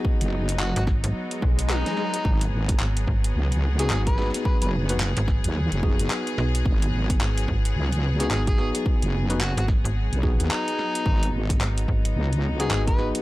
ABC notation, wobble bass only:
X:1
M:4/4
L:1/16
Q:"Swing 16ths" 1/4=109
K:G#m
V:1 name="Wobble bass" clef=bass
z F,,,4 z8 z3 | G,,,2 G,,,2 z4 C,,4 z4 | z F,,,4 z2 D,,2 F,,,3 z4 | G,,,2 G,,,2 z4 C,,4 z4 |
z F,,,4 z4 B,,,2 D,, z4 | G,,,2 G,,,2 z4 C,,4 z4 |]